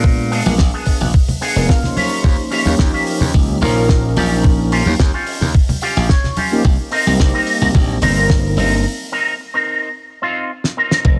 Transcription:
Already playing: slap bass A#2, analog polysynth G#3 B3 D4 F4
0.04 kick
0.31 clean electric guitar B3 D4 G#4, open hi-hat
0.46 slap bass A#1, analog polysynth G#3 B3 D4 F4 A#4, high conga
0.58 slap bass A#1, kick, snare
0.74 clean electric guitar B3 D4 G#4
0.86 kick, open hi-hat
1.01 slap bass A#1, low conga
1.14 kick
1.28 open hi-hat, high conga, low conga
1.41 clean electric guitar B3 D4 G#4 G#5, open hi-hat
1.56 slap bass F1, analog polysynth G#3 B3 D4 F4 A#4
1.69 clean electric guitar F5, kick, snare
1.83 analog polysynth F3 A#3 C#4 D#4 C6, snare, low conga
1.96 clean electric guitar C#4 F4 G4 C#5, open hi-hat, high conga
2.24 slap bass D#2, kick
2.51 clean electric guitar C#4 F4 G4, open hi-hat
2.65 slap bass D#2, analog polysynth F3 A#3 C#4 D#4 G4, high conga
2.79 slap bass D#2, kick, snare
2.93 clean electric guitar C#4 F4 G4, open hi-hat
3.07 open hi-hat
3.21 slap bass D#2, low conga
3.34 slap bass C#2, kick
3.48 high conga
3.61 slap bass A#1, analog polysynth F3 A#3 C#4 D#4 A#4, clean electric guitar C#4 F4 A#4, open hi-hat, low conga
3.89 kick, snare
4.16 slap bass A#1, clean electric guitar C#4 F4 G4, open hi-hat, high conga
4.44 kick
4.72 clean electric guitar C#4 F4 G4, open hi-hat
4.86 slap bass D#2, analog polysynth F3 A#3 C#4 D#4 G4, high conga
5.00 slap bass D#2, kick, snare
5.14 clean electric guitar C#4 F4 G4
5.27 open hi-hat
5.41 slap bass D#2, low conga
5.55 kick
5.69 open hi-hat, high conga, low conga
5.81 clean electric guitar C#4 F4 G4 F5, open hi-hat
5.97 slap bass A#1
6.09 clean electric guitar C#5, kick, snare
6.24 snare, low conga
6.36 clean electric guitar C#4 F4 G4, open hi-hat, high conga
6.51 analog polysynth F3 A#3 C#4 D#4 G4
6.65 slap bass C2, kick
6.92 clean electric guitar C4 D#4 A#4, open hi-hat
7.06 slap bass C2, analog polysynth G3 A#3 C4 D#4 G4, high conga
7.20 slap bass C2, kick, snare
7.34 clean electric guitar C4 D#4 A#4, open hi-hat
7.47 open hi-hat
7.61 slap bass C2, low conga
7.75 slap bass A#1, kick
7.89 high conga
8.01 slap bass G1, analog polysynth G3 A#3 C4 D#4 A#4, clean electric guitar C4 D#4 A#4, open hi-hat, low conga
8.30 kick, snare
8.57 slap bass G1, clean electric guitar C4 D#4 A#4, open hi-hat, high conga
9.12 clean electric guitar C4 D#4 A#4
9.54 clean electric guitar C4 D#4 A#4
10.22 clean electric guitar C4 D#4 F4
10.64 snare
10.77 clean electric guitar C4 D#4 A#4
10.91 snare
11.05 slap bass F1, kick

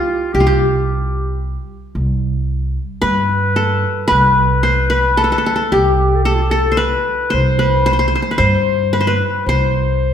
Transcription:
Already playing: clarinet F4, qanun F4 G4
0.33 upright bass C2, clarinet G4, qanun G4
0.40 qanun F4
0.47 qanun G4, clarinet G4
1.95 upright bass C2
3.02 upright bass G2, qanun B4, clarinet B4
3.56 qanun A4
4.08 upright bass C2, qanun B4, clarinet B4
4.63 qanun C5
4.90 qanun B4, clarinet B4
5.17 qanun A4
5.24 qanun A4
5.32 qanun A4
5.38 qanun A4
5.46 qanun A4
5.56 qanun A4
5.72 upright bass C2, qanun G4, clarinet G4
6.16 clarinet A4
6.23 clarinet G4, qanun A4
6.35 clarinet F4
6.43 clarinet G4
6.50 clarinet A4, qanun A4
6.72 qanun C5
6.77 qanun B4, clarinet B4
7.30 upright bass C2, qanun C5
7.34 clarinet C5
7.59 qanun B4
7.86 qanun C5
7.93 qanun C5
7.99 qanun C5
8.08 qanun C5
8.15 qanun C5
8.22 qanun C5
8.31 qanun B4
8.38 upright bass G2, qanun C5, clarinet C5
8.93 qanun B4
9.01 qanun C5
9.07 clarinet B4, qanun B4
9.46 upright bass C2, clarinet C5, qanun C5

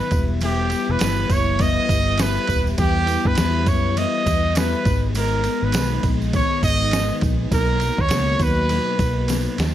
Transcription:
Already playing: clean electric guitar D#3 F#3 B3 D#4, trumpet B4
0.11 fingered electric bass E1, clean electric guitar G3 B3 E4, kick, ride, tambourine
0.41 clean electric guitar E3 G3 B3 E4, string machine E3 E4 G4 B4, trumpet G4, ride, tambourine
0.70 clean electric guitar G3 B3 E4, ride, tambourine
0.89 fingered electric bass E1, trumpet B4
0.99 fingered electric bass G1, clean electric guitar E3 G3 B3, snare, ride, tambourine
1.03 clean electric guitar E4
1.29 fingered electric bass F#1, clean electric guitar G3 B3 E4, trumpet C#5, kick, ride, tambourine
1.59 clean electric guitar E3 G3 B3 E4, trumpet D#5, kick, ride, tambourine
1.89 fingered electric bass G1, clean electric guitar G3 B3 E4, kick, ride, tambourine
2.18 clean electric guitar E3 G3 B3 E4, trumpet B4, snare, ride, tambourine
2.37 tambourine
2.47 fingered electric bass D#1, clean electric guitar G3 B3 E4, kick, ride, tambourine
2.67 tambourine
2.77 fingered electric bass E2, clean electric guitar E3 G3 B3 E4, trumpet G4, kick, ride, tambourine
3.07 clean electric guitar G3 B3 E4, ride, tambourine
3.25 fingered electric bass G2, trumpet B4, kick
3.35 fingered electric bass E2, clean electric guitar E3 G3, snare, ride, tambourine
3.39 clean electric guitar B3 E4
3.66 fingered electric bass F#2, clean electric guitar G3 B3, trumpet C#5, kick, ride, tambourine
3.96 clean electric guitar E3 G3 B3 E4, trumpet D#5, ride, tambourine
4.26 fingered electric bass E2, clean electric guitar G3 B3 E4, kick, ride, tambourine
4.55 clean electric guitar E3 G3 B3 E4, trumpet B4, snare, ride, tambourine
4.85 fingered electric bass G#1, string machine G#3 B3 D#4, clean electric guitar G#3 B3 D#4, kick, ride, tambourine
5.15 clean electric guitar G#2 D#3 G#3 B3 D#4, trumpet A#4, ride, tambourine
5.44 clean electric guitar G#3 B3 D#4, ride, tambourine
5.62 fingered electric bass G#1, trumpet B4
5.72 fingered electric bass B1, clean electric guitar D#3 G#3, snare, ride, tambourine
5.76 clean electric guitar B3 D#4
6.03 fingered electric bass A#1, clean electric guitar G#3 B3 D#4, kick, ride, tambourine
6.22 tambourine
6.33 clean electric guitar G#2 D#3 G#3 B3 D#4, trumpet C#5, kick, ride, tambourine
6.63 fingered electric bass G#1, clean electric guitar G#3 B3 D#4, trumpet D#5, kick, ride, tambourine
6.82 tambourine
6.91 clean electric guitar D#3 G#3 B3, snare, ride, tambourine
6.96 clean electric guitar D#4
7.21 fingered electric bass A#1, clean electric guitar G#3 B3 D#4, kick, ride, tambourine
7.51 fingered electric bass B1, clean electric guitar B2 F#3 A#3 D#4, string machine F#3, trumpet A#4, kick, ride, tambourine
7.80 clean electric guitar A#3 D#4, ride, tambourine
7.84 clean electric guitar F#3
7.98 fingered electric bass D#2, trumpet C#5, kick
8.09 fingered electric bass C#2, clean electric guitar B2 F#3 A#3, snare, ride, tambourine
8.13 clean electric guitar D#4
8.39 fingered electric bass D#2, clean electric guitar F#3 A#3 D#4, trumpet B4, kick, ride, tambourine
8.69 clean electric guitar B2 F#3 A#3 D#4, ride, tambourine
8.99 fingered electric bass B1, clean electric guitar F#3 A#3 D#4, kick, ride, tambourine
9.28 clean electric guitar B2 F#3 A#3, snare, ride, tambourine
9.32 clean electric guitar D#4
9.58 fingered electric bass D#2, clean electric guitar F#3 A#3 D#4, snare, ride, tambourine

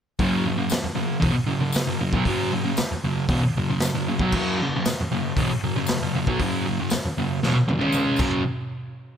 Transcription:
0.19 distorted electric guitar F#2 C#3 F#3, kick, open hi-hat
0.46 distorted electric guitar F#2 C#3
0.58 distorted electric guitar F#2 C#3
0.70 muted distorted electric guitar stroke, snare, open hi-hat, tambourine
0.84 muted distorted electric guitar stroke
0.95 distorted electric guitar F#2 C#3
1.20 distorted electric guitar E2 B2, kick, open hi-hat
1.33 muted distorted electric guitar stroke
1.47 distorted electric guitar F#2 C#3
1.61 distorted electric guitar F#2 C#3
1.72 snare, open hi-hat, tambourine
1.87 distorted electric guitar F#2 C#3
2.00 distorted electric guitar F#2 C#3
2.13 distorted electric guitar B2 F#3, kick
2.25 distorted electric guitar F#2 C#3 F#3, kick, open hi-hat
2.52 distorted electric guitar F#2 C#3
2.64 distorted electric guitar F#2 C#3
2.77 muted distorted electric guitar stroke, snare, open hi-hat, tambourine
2.92 muted distorted electric guitar stroke
3.04 distorted electric guitar F#2 C#3
3.29 distorted electric guitar E2 B2, kick, open hi-hat
3.43 muted distorted electric guitar stroke
3.57 distorted electric guitar F#2 C#3
3.70 distorted electric guitar F#2 C#3
3.80 snare, open hi-hat, tambourine
3.95 distorted electric guitar F#2 C#3
4.08 distorted electric guitar F#2 C#3
4.19 distorted electric guitar B2 F#3, kick
4.32 distorted electric guitar F#2 C#3, kick, crash
4.36 distorted electric guitar F#3
4.61 distorted electric guitar F#2 C#3
4.76 distorted electric guitar F#2 C#3
4.85 muted distorted electric guitar stroke, snare, open hi-hat, tambourine
5.01 muted distorted electric guitar stroke
5.12 distorted electric guitar F#2 C#3
5.37 distorted electric guitar E2 B2, kick, open hi-hat
5.52 muted distorted electric guitar stroke
5.64 distorted electric guitar F#2 C#3
5.76 distorted electric guitar F#2 C#3
5.87 snare, open hi-hat, tambourine
6.02 distorted electric guitar F#2 C#3
6.15 distorted electric guitar F#2 C#3
6.27 distorted electric guitar B2 F#3, kick
6.40 distorted electric guitar F#2 C#3 F#3, kick, open hi-hat
6.67 distorted electric guitar F#2 C#3
6.80 distorted electric guitar F#2 C#3
6.90 muted distorted electric guitar stroke, snare, open hi-hat, tambourine
7.05 muted distorted electric guitar stroke
7.18 distorted electric guitar F#2 C#3
7.43 distorted electric guitar E2 B2, snare
7.55 muted distorted electric guitar stroke
7.68 distorted electric guitar F#2 C#3, high tom
7.79 distorted electric guitar C#3 G#3 C#4, high tom
7.92 mid tom, tambourine
8.16 distorted electric guitar F#2 C#3 F#3, kick, crash, tambourine

